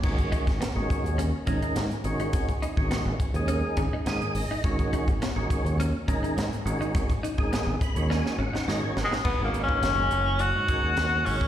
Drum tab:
CC |x---------------|----------------|----------------|----------------|
HH |-xxxx-xxx-xxxxxx|xxx-x-xxx-x-xxo-|xxxxx-xxx-xxxxxx|xxx-x-xx--------|
SD |---oo-------o---|----o-------o---|----o-------o---|----o---oo-oo-oo|
BD |oooo--o---o-----|oo-o--o---o-----|oooo--o---o-----|oo-o--o---------|

CC |x---------------|
HH |--x-x-x-x-x-x-o-|
SD |----o-------o---|
BD |o--o------o----o|